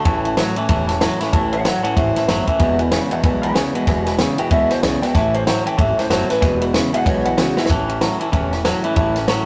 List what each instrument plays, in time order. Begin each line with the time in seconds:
Already playing: clean electric guitar A5
0.04 upright bass A1, steel-string acoustic guitar A2 E3 A3 C#4 E4, clean electric guitar A2 E3, upright piano C#5 E5 A5, kick, ride
0.24 steel-string acoustic guitar A3 C#4 E4, upright piano C#5 E5 A5, ride
0.37 clean electric guitar A2 F#3, steel-string acoustic guitar E3 A3 C#4 E4, upright piano C#5 E5 A5, snare, ride
0.56 clean electric guitar A2 E3, steel-string acoustic guitar A3 C#4 E4, upright piano C#5 E5 A5, muted upright bass stroke, ride
0.68 upright bass E1, clean electric guitar A2 E3, steel-string acoustic guitar A2 E3 A3 C#4 E4, upright piano C#5 E5 A5, kick, ride
0.87 steel-string acoustic guitar A3 C#4 E4, upright piano C#5 E5 A5, snare, ride
1.00 clean electric guitar A2 F#3, steel-string acoustic guitar E3 A3 C#4 E4, upright piano C#5 E5 A5, snare, ride
1.19 clean electric guitar A2 E3, steel-string acoustic guitar A3 C#4 E4, upright piano C#5 E5 B5, muted upright bass stroke, snare, ride
1.32 upright bass A1, steel-string acoustic guitar A2 E3 A3 C#4 E4, clean electric guitar A2 E3, upright piano C#5 E5 A5, kick, ride
1.51 steel-string acoustic guitar A3 C#4 E4, upright piano C#5 E5 A5, clean electric guitar C#5 F#5, ride
1.63 clean electric guitar A2 F#3 C#5 F#5, steel-string acoustic guitar E3 A3 E4, upright piano C#5 E5 A5, snare, ride
1.83 clean electric guitar A2 E3 C#5 F#5, steel-string acoustic guitar A3 C#4 E4, upright piano C#5 E5 A5, muted upright bass stroke, ride
1.96 upright bass G#1, clean electric guitar A2 E3 C5 E5, steel-string acoustic guitar A2 E3 A3 C#4 E4, upright piano C#5 E5 A5, kick, ride
2.15 steel-string acoustic guitar A3 C#4 E4, clean electric guitar C5 E5, upright piano C#5 E5 A5, snare, ride
2.27 upright bass F#1, clean electric guitar A2 F#3 C5 E5, steel-string acoustic guitar E3 A3 C#4 E4, upright piano C#5 E5 A5, snare, ride
2.47 clean electric guitar A2 E3 E5, steel-string acoustic guitar A3 C#4 E4, upright piano C#5 E5 A5, kick, ride
2.59 upright bass E1, clean electric guitar E2 B2, steel-string acoustic guitar E2 B2 E3 G#3 B3 E4, upright piano B4 E5 G#5, kick, ride
2.79 steel-string acoustic guitar E3 G#3 B3 E4, upright piano B4 E5 G#5, ride
2.91 clean electric guitar E2 C#3, steel-string acoustic guitar E3 G#3 B3 E4, upright piano B4 E5 G#5, snare, ride
3.10 clean electric guitar E2 B2, steel-string acoustic guitar E3 G#3 B3 E4, upright piano B4 E5 F#5, muted upright bass stroke, ride
3.23 upright bass B1, clean electric guitar E2 B2, steel-string acoustic guitar E2 B2 E3 G#3 B3 E4, upright piano B4 E5 G#5, kick, ride
3.42 steel-string acoustic guitar E3 G#3 B3 E4, upright piano B4 E5 G#5, clean electric guitar G5 B5, ride
3.54 clean electric guitar E2 C#3 G#5, steel-string acoustic guitar E3 G#3 B3 E4, upright piano B4 E5 G#5, snare, ride
3.74 clean electric guitar E2 B2, steel-string acoustic guitar E3 G#3 B3 E4, upright piano B4 E5 G#5, muted upright bass stroke, ride
3.87 upright bass E1, steel-string acoustic guitar E2 B2 E3 G#3 B3 E4, clean electric guitar E2 B2, upright piano B4 E5 G#5, kick, snare, ride
4.06 steel-string acoustic guitar E3 G#3 B3 E4, upright piano B4 E5 G#5, snare, ride
4.18 clean electric guitar E2 C#3, steel-string acoustic guitar E3 G#3 B3 E4, upright piano B4 E5 G#5, snare, ride
4.38 clean electric guitar E2 B2 G5, steel-string acoustic guitar E3 G#3 B3 E4, upright piano B4 E5 G#5, muted upright bass stroke, ride
4.50 upright bass C#2, steel-string acoustic guitar E2 B2 E3 G#3 B3 E4, clean electric guitar E2 B2 E5, upright piano B4 E5 G#5, kick, ride
4.70 steel-string acoustic guitar E3 G#3 B3 E4, upright piano B4 E5 G#5, clean electric guitar C5, snare, ride
4.82 upright bass B1, clean electric guitar E2 C#3 D5, steel-string acoustic guitar E3 G#3 B3 E4, upright piano B4 E5 G#5, snare, ride
5.02 clean electric guitar E2 B2 G5, steel-string acoustic guitar E3 G#3 B3 E4, upright piano B4 E5 G#5, muted upright bass stroke, snare, ride
5.13 upright bass A1, steel-string acoustic guitar A2 E3 A3 C#4 E4, clean electric guitar A2 E3 E5, upright piano C#5 E5 A5, kick, snare, ride
5.33 steel-string acoustic guitar A3 C#4 E4, clean electric guitar C5, upright piano C#5 E5 A5, ride
5.46 clean electric guitar A2 F#3 C5, steel-string acoustic guitar E3 A3 C#4 E4, upright piano C#5 E5 A5, snare, ride
5.65 clean electric guitar A2 E3 G5, steel-string acoustic guitar A3 C#4 E4, upright piano C#5 E5 A5, muted upright bass stroke, ride
5.77 upright bass G#1, clean electric guitar A2 E3 E5, steel-string acoustic guitar A2 E3 A3 C#4 E4, upright piano C#5 E5 A5, kick, ride
5.96 steel-string acoustic guitar A3 C#4 E4, clean electric guitar C5, upright piano C#5 E5 A5, muted upright bass stroke, snare, ride
6.09 upright bass F#1, clean electric guitar A2 F#3 C5, steel-string acoustic guitar E3 A3 C#4 E4, upright piano C#5 E5 A5, snare, ride
6.28 clean electric guitar A2 E3 B4, steel-string acoustic guitar A3 C#4 E4, upright piano C#5 E5 A5, muted upright bass stroke, snare, ride
6.40 upright bass E1, clean electric guitar E2 B2, steel-string acoustic guitar E2 B2 E3 G#3 B3 E4, upright piano B4 E5 G#5, kick, snare, ride
6.60 steel-string acoustic guitar E3 G#3 B3 E4, upright piano B4 E5 B5, ride
6.73 clean electric guitar E2 C#3, steel-string acoustic guitar E3 G#3 B3 E4, upright piano B4 E5 G#5, snare, ride
6.92 clean electric guitar E2 B2 F#5, steel-string acoustic guitar E3 G#3 B3 E4, upright piano B4 E5 G#5, muted upright bass stroke, ride
7.05 upright bass B1, steel-string acoustic guitar E2 B2 E3 G#3 B3 E4, clean electric guitar E2 B2 C#5, upright piano B4 E5 G#5, kick, ride
7.24 steel-string acoustic guitar E3 G#3 B3 E4, upright piano B4 E5 G#5, clean electric guitar F#5, ride
7.37 clean electric guitar E2 C#3 F#4 F#5, steel-string acoustic guitar E3 G#3 B3 E4, upright piano B4 E5 G#5, snare, ride
7.57 clean electric guitar E2 B2 E4 E5, steel-string acoustic guitar E3 G#3 B3 E4, upright piano B4 E5 G#5, snare
7.66 upright bass A1, clean electric guitar A2, steel-string acoustic guitar A2 E3, upright piano C#5 E5, kick, snare
7.70 clean electric guitar E3 C#4, steel-string acoustic guitar A3 C#4 E4, upright piano A5, snare, ride
7.88 steel-string acoustic guitar A3 C#4 E4, clean electric guitar C#4, upright piano C#5 E5 A5, ride
8.00 clean electric guitar A2 F#3 C#4, steel-string acoustic guitar E3 A3 E4, upright piano C#5 E5 A5, snare, ride
8.19 clean electric guitar A2 E3 E4, steel-string acoustic guitar A3 C#4 E4, upright piano C#5 E5 A5, muted upright bass stroke, ride
8.32 upright bass E1, clean electric guitar A2 E3 C#4, steel-string acoustic guitar A2 E3 A3 C#4 E4, upright piano C#5 E5 A5, kick, ride
8.51 steel-string acoustic guitar A3 C#4 E4, clean electric guitar C#4, upright piano C#5 E5 A5, snare, ride
8.64 clean electric guitar A2 F#3, steel-string acoustic guitar E3 C#4, upright piano C#5 E5 A5, snare, ride
8.82 clean electric guitar A2 E3 E4, steel-string acoustic guitar A3 C#4 E4, upright piano C#5 E5 A5, muted upright bass stroke, ride
8.95 upright bass A1, steel-string acoustic guitar A2 E3 A3 C#4 E4, clean electric guitar A2 E3 E4, upright piano C#5 E5 A5, kick, ride
9.14 steel-string acoustic guitar A3 C#4 E4, clean electric guitar C#4, upright piano C#5 E5 A5, snare, ride
9.27 clean electric guitar A2 F#3 C#4, steel-string acoustic guitar E3 A3 E4, upright piano C#5 E5 A5, snare, ride